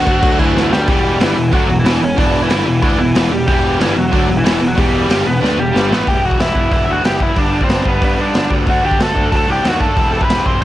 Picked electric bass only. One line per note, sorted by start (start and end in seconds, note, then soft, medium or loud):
0.07 0.22 D2 loud
0.23 0.38 D2 loud
0.40 0.55 D2 medium
0.56 0.71 D2 medium
0.73 0.88 D2 loud
0.88 1.18 E1 medium
1.20 1.36 G1 medium
1.37 1.52 E1 medium
1.53 1.68 D2 medium
1.70 1.84 E1 medium
1.85 2.00 E1 loud
2.02 2.17 E1 medium
2.18 2.48 E1 medium
2.50 2.65 G1 loud
2.66 2.81 E1 medium
2.83 2.98 D2 loud
2.99 3.14 E1 medium
3.16 3.30 E1 loud
3.31 3.46 E1 medium
3.48 3.78 E1 loud
3.79 3.94 G1 medium
3.96 4.11 E1 medium
4.13 4.28 D2 loud
4.28 4.43 E1 medium
4.45 4.60 E1 loud
4.61 4.76 E1 medium
4.78 5.07 E1 loud
5.09 5.24 G1 medium
5.26 5.41 E1 medium
5.42 5.57 D2 medium
5.58 5.73 E1 medium
5.75 5.90 G1 loud
5.91 6.06 A1 loud
6.08 6.19 E1 medium
6.24 6.35 E1 medium
6.40 6.51 E1 medium
6.55 6.67 E1 medium
6.72 6.83 E1 medium
6.88 6.99 D2 medium
7.04 7.27 F#1 medium
7.37 7.60 G1 medium
7.69 7.81 G1 medium
7.85 7.97 G1 medium
8.02 8.14 G2 medium
8.19 8.30 G2 medium
8.35 8.47 G1 medium
8.51 8.67 D2 medium
8.68 8.79 D2 medium
8.84 8.95 D2 medium
8.99 9.11 D2 medium
9.16 9.28 D2 medium
9.33 9.44 D2 medium
9.47 9.59 C2 medium
9.63 9.87 D#2 medium
9.97 10.20 E1 medium
10.28 10.40 E1 medium
10.46 10.57 E1 medium